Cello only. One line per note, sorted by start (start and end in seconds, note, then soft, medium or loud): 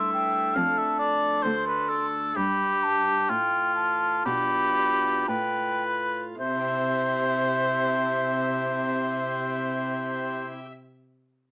0.00 0.53 G2 medium
0.56 1.42 F2 medium
1.46 2.33 D2 medium
2.37 3.26 G2 medium
3.30 4.23 A2 medium
4.26 5.25 B2 medium
5.28 6.34 A2 medium
6.38 10.44 C3 medium